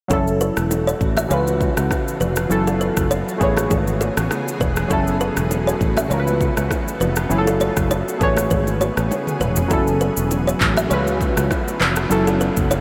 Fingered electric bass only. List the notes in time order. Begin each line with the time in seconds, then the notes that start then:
0.11 F#1
0.57 E1
1.01 A1
1.31 C#2
1.77 C#2
2.21 F1
2.51 F#1
2.97 F#1
3.41 A1
3.71 G#1
4.17 A1
4.61 E1
4.91 F#1
5.37 E1
5.81 A1
6.11 C#2
6.57 C#2
7.01 F1
7.31 F#1
7.77 F#1
8.21 A1
8.51 G#1
8.97 A1
9.41 E1
9.71 F#1
10.17 E1
10.61 A1
10.91 C#2
11.37 C#2
11.81 F1
12.11 F#1
12.57 F#1